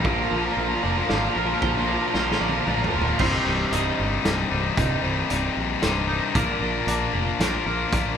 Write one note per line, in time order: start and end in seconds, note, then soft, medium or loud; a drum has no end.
0.04 0.22 A#1 loud
0.04 0.13 A#2 medium
0.04 3.17 D3 medium
0.04 3.17 F3 medium
0.04 0.12 F3 medium
0.04 3.17 A#3 medium
0.04 0.12 F4 medium
0.04 3.17 F4 medium
0.04 0.31 A#4 medium
0.04 0.13 A#4 medium
0.04 kick loud
0.12 0.19 A#2 medium
0.12 0.20 F3 medium
0.12 0.20 F4 medium
0.12 0.20 A#4 medium
0.20 0.28 A#2 medium
0.20 0.28 F3 medium
0.20 0.28 F4 medium
0.20 0.28 A#4 medium
0.28 0.48 A#1 medium
0.28 0.36 A#2 medium
0.28 0.36 F3 medium
0.28 1.08 D4 medium
0.28 0.36 F4 medium
0.28 0.36 A#4 medium
0.28 1.36 A#4 medium
0.36 0.44 A#2 medium
0.36 0.44 F3 medium
0.36 0.43 F4 medium
0.36 0.44 A#4 medium
0.43 0.51 A#2 medium
0.43 0.52 F3 medium
0.43 0.51 F4 medium
0.43 0.51 A#4 medium
0.51 0.59 A#2 medium
0.51 0.60 F3 medium
0.51 0.59 F4 medium
0.51 0.59 A#4 medium
0.57 0.74 A#1 medium
0.57 0.67 A#2 medium
0.57 1.89 F4 medium
0.57 0.67 F4 medium
0.57 0.68 A#4 medium
0.61 0.68 F3 medium
0.68 0.75 A#2 medium
0.68 0.75 F3 medium
0.68 0.74 F4 medium
0.68 0.75 A#4 medium
0.74 0.82 A#2 medium
0.74 0.83 F3 medium
0.74 0.82 F4 medium
0.74 0.83 A#4 medium
0.82 1.01 F1 medium
0.82 0.90 A#2 medium
0.82 0.90 F3 medium
0.82 2.15 A#3 medium
0.82 0.90 F4 medium
0.82 0.91 A#4 medium
0.82 1.08 D5 medium
0.90 0.98 A#2 medium
0.90 0.98 F3 medium
0.90 0.98 F4 medium
0.90 0.99 A#4 medium
0.98 1.05 A#2 medium
0.98 1.06 F3 medium
0.98 1.05 F4 medium
0.98 1.07 A#4 medium
1.06 1.13 A#2 medium
1.06 1.15 F3 medium
1.06 1.87 D4 medium
1.06 1.13 F4 medium
1.06 1.15 A#4 medium
1.06 1.35 D5 medium
1.06 snare medium
1.10 1.27 G#1 medium
1.10 1.21 F4 medium
1.14 1.20 A#2 medium
1.14 1.22 F3 medium
1.14 1.22 A#4 medium
1.21 1.28 A#2 medium
1.21 1.29 F3 medium
1.21 1.29 F4 medium
1.21 1.30 A#4 medium
1.29 1.37 A#2 medium
1.29 1.37 F3 medium
1.29 1.37 F4 medium
1.29 1.37 A#4 medium
1.35 1.53 A#1 medium
1.35 1.44 A#2 medium
1.35 1.45 F3 medium
1.35 1.45 F4 medium
1.35 2.67 A#4 medium
1.35 1.61 A#4 medium
1.35 1.46 A#4 medium
1.45 1.52 A#2 medium
1.45 1.53 F3 medium
1.45 1.53 F4 medium
1.45 1.53 A#4 medium
1.53 1.61 A#2 medium
1.53 1.61 F3 medium
1.53 1.61 F4 medium
1.53 1.61 A#4 medium
1.62 1.97 A#1 loud
1.62 1.69 A#2 medium
1.62 1.69 F3 loud
1.62 1.69 F4 medium
1.62 1.71 A#4 loud
1.62 1.87 C5 loud
1.62 kick loud
1.69 1.77 A#2 medium
1.69 1.77 F3 medium
1.69 1.76 F4 medium
1.69 1.79 A#4 medium
1.77 1.84 A#2 medium
1.77 1.84 F3 medium
1.77 1.84 F4 medium
1.77 1.86 A#4 medium
1.84 1.91 A#2 medium
1.84 1.92 F3 medium
1.84 2.66 D4 medium
1.84 1.91 F4 medium
1.84 1.94 A#4 medium
1.84 2.13 D5 medium
1.92 1.99 A#2 medium
1.92 1.99 F3 medium
1.92 1.99 F4 medium
1.92 2.02 A#4 medium
1.99 2.07 A#2 medium
1.99 2.07 F3 medium
1.99 2.07 F4 medium
1.99 2.10 A#4 medium
2.07 2.14 A#2 medium
2.07 2.14 F3 medium
2.07 2.14 F4 medium
2.07 2.18 A#4 loud
2.14 2.32 A#1 loud
2.14 2.22 A#2 medium
2.14 2.22 F3 medium
2.14 3.20 F4 medium
2.14 2.22 F4 medium
2.14 2.40 C5 medium
2.14 snare medium
2.18 2.29 A#2 medium
2.18 2.29 F3 medium
2.18 2.27 F4 medium
2.18 2.25 A#4 medium
2.25 2.37 A#2 medium
2.25 2.35 F4 medium
2.25 2.33 A#4 medium
2.30 2.37 F3 medium
2.30 snare medium
2.34 2.44 A#2 medium
2.34 2.45 F3 medium
2.34 2.41 A#4 medium
2.38 2.59 A#1 medium
2.38 3.20 A#3 medium
2.38 2.44 F4 medium
2.38 2.49 A#4 medium
2.38 2.93 D5 medium
2.44 2.51 A#2 medium
2.44 2.51 F3 medium
2.44 2.52 F4 medium
2.49 2.59 A#2 medium
2.49 2.59 F3 medium
2.49 2.59 F4 medium
2.49 2.57 A#4 medium
2.49 high tom medium
2.58 2.67 A#2 medium
2.58 2.67 F3 medium
2.58 2.67 F4 medium
2.58 2.64 A#4 medium
2.65 2.85 A#1 loud
2.65 2.75 A#2 medium
2.65 2.75 F3 medium
2.65 3.20 D4 medium
2.65 2.74 F4 medium
2.65 2.73 A#4 medium
2.65 mid tom medium
2.74 2.82 A#2 medium
2.74 2.82 F3 medium
2.74 2.82 F4 medium
2.74 2.81 A#4 medium
2.81 2.90 A#2 medium
2.81 2.89 F3 medium
2.81 2.90 F4 medium
2.81 2.88 A#4 medium
2.81 mid tom medium
2.88 2.97 A#2 medium
2.88 2.97 F3 medium
2.88 2.97 F4 medium
2.88 2.96 A#4 medium
2.94 3.11 D1 loud
2.94 3.04 A#2 medium
2.94 3.04 F3 medium
2.94 3.05 F4 medium
2.94 3.20 A#4 medium
2.94 3.04 A#4 medium
3.01 3.12 A#2 medium
3.01 3.12 F3 medium
3.01 3.11 A#4 medium
3.01 floor tom medium
3.06 3.12 F4 medium
3.12 3.19 A#2 medium
3.12 3.19 F3 medium
3.12 3.20 F4 medium
3.12 3.20 A#4 medium
3.19 3.37 C1 loud
3.19 4.23 C2 loud
3.19 3.71 G2 loud
3.19 3.47 C3 loud
3.19 3.46 G3 loud
3.19 6.32 D#4 medium
3.19 3.45 D#4 loud
3.19 6.32 G4 medium
3.19 3.98 C5 medium
3.19 6.32 C5 medium
3.19 6.32 C6 medium
3.19 kick loud
3.19 crash loud
3.45 3.64 C1 loud
3.45 3.97 G2 medium
3.45 3.72 C3 medium
3.45 3.73 G3 medium
3.45 3.73 D#4 medium
3.72 3.90 C1 loud
3.72 4.23 G2 medium
3.72 4.24 C3 medium
3.72 4.24 G3 loud
3.72 4.25 D#4 medium
3.72 4.77 D#5 medium
3.72 closed hi-hat medium
3.98 4.17 G1 medium
3.98 5.03 G2 medium
3.98 4.24 C5 medium
4.24 4.43 C1 medium
4.24 4.76 C2 loud
4.24 4.77 G2 loud
4.24 4.51 C3 loud
4.24 4.50 G3 loud
4.24 4.49 D#4 loud
4.24 4.77 C5 medium
4.24 snare medium
4.24 closed hi-hat medium
4.50 4.69 C1 loud
4.50 4.77 C3 medium
4.50 4.77 G3 medium
4.50 4.78 D#4 medium
4.77 4.95 C1 loud
4.77 5.30 C2 loud
4.77 5.28 G2 loud
4.77 5.04 C3 loud
4.77 5.03 G3 loud
4.77 5.02 D#4 loud
4.77 5.04 D#5 loud
4.77 kick loud
4.77 closed hi-hat medium
5.03 5.22 C1 medium
5.03 5.55 G2 medium
5.03 5.29 C3 medium
5.03 5.30 G3 medium
5.03 5.30 D#4 medium
5.03 5.30 C5 medium
5.30 5.48 C1 loud
5.30 5.81 G2 medium
5.30 5.81 C3 medium
5.30 5.82 G3 medium
5.30 5.82 D#4 medium
5.30 5.82 D5 medium
5.30 closed hi-hat medium
5.56 5.75 A#1 medium
5.56 6.35 G2 medium
5.82 6.19 C1 loud
5.82 6.33 C2 loud
5.82 6.33 G2 loud
5.82 6.09 C3 loud
5.82 6.08 G3 loud
5.82 6.07 D#4 loud
5.82 6.09 C5 medium
5.82 snare medium
5.82 closed hi-hat medium
6.09 6.34 C3 medium
6.09 6.34 G3 medium
6.09 6.33 D#4 medium
6.09 6.34 A#4 medium
6.34 6.53 A#1 loud
6.34 7.40 A#2 loud
6.34 7.40 F3 loud
6.34 6.63 A#3 loud
6.34 6.62 D4 loud
6.34 6.62 F4 loud
6.34 8.17 A#4 medium
6.34 7.14 A#4 loud
6.34 6.61 A#4 loud
6.34 8.17 D5 medium
6.34 8.17 F5 medium
6.34 8.17 D6 medium
6.34 kick loud
6.34 closed hi-hat medium
6.61 6.79 A#1 medium
6.61 6.88 A#3 medium
6.61 6.88 D4 medium
6.61 6.89 F4 medium
6.61 6.89 A#4 medium
6.87 7.05 A#1 loud
6.87 7.40 A#3 medium
6.87 7.40 D4 medium
6.87 7.41 F4 medium
6.87 7.41 A#4 loud
6.87 7.93 D5 medium
6.87 closed hi-hat medium
7.13 7.31 F1 medium
7.13 8.17 A#3 medium
7.13 7.40 A#4 medium
7.40 7.57 A#1 medium
7.40 7.91 A#2 loud
7.40 7.91 F3 loud
7.40 7.67 A#3 loud
7.40 7.66 D4 loud
7.40 7.66 F4 loud
7.40 7.93 A#4 medium
7.40 7.65 A#4 loud
7.40 snare medium
7.40 closed hi-hat medium
7.66 7.84 A#1 loud
7.66 7.92 A#3 medium
7.66 7.92 D4 medium
7.66 7.92 F4 medium
7.66 7.93 A#4 medium
7.92 8.10 A#1 loud
7.92 8.17 A#2 loud
7.92 8.17 F3 loud
7.92 8.17 A#3 loud
7.92 8.17 D4 loud
7.92 8.17 F4 loud
7.92 8.17 A#4 loud
7.92 8.17 D5 loud
7.92 kick loud
7.92 closed hi-hat medium